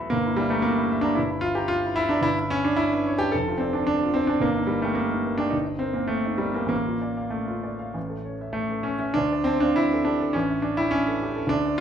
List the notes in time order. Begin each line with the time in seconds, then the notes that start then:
Already playing: B2 F#3 G#3 A3 B3 E4 E5
0.00 B5
0.10 G1 A#3
0.26 E4
0.36 G3 E5
0.50 A3 A#5
0.62 A#3
0.78 E4
0.91 E5
1.01 D4 A#5
1.15 G1 E4
1.31 E4
1.41 F4 E5
1.55 G4 A#5
1.68 F4
1.85 E4
1.96 E4 E5
2.09 D4 A#5
2.21 G1 E4
2.40 E4
2.50 C#4 C#5
2.65 D4 A5
2.76 E4
2.94 E4
3.07 C#5
3.18 G4 A5
3.32 F1 A4
3.48 F4
3.58 C4 D5
3.73 D4 A5
3.87 D4
4.03 F4
4.14 C4 D5
4.27 D4 A5
4.40 G1 A#3
4.57 D#4
4.67 G3 A#4
4.82 A3 G5
4.95 A#3
5.11 D#4
5.26 A#4
5.38 D4 G5
5.50 G1 D#4
5.67 D#4
5.79 C4 A#4
5.93 A#3 G5
6.07 A3
6.26 D#4
6.38 G3 A#4
6.54 A#3 G5
6.66 A1 A#3
6.86 F4
7.02 D5
7.17 F5
7.30 A3
7.48 F4
7.64 D5
7.79 F5
7.94 A1
8.10 A4
8.25 C#5
8.41 E5
8.53 A3
8.71 A4
8.83 C#4 C#5
8.99 C#4 E5
9.14 D2 D4
9.32 D5
9.44 C4 A5
9.60 D4 F5
9.76 E4 D5
9.93 A4
10.05 D4 G4
10.21 A4
10.33 A1 C#4
10.50 E5
10.62 D4 A5
10.77 E4 G5
10.91 C#4 E5
11.08 A4
11.22 G4
11.36 A4
11.47 D2 D4
11.66 D5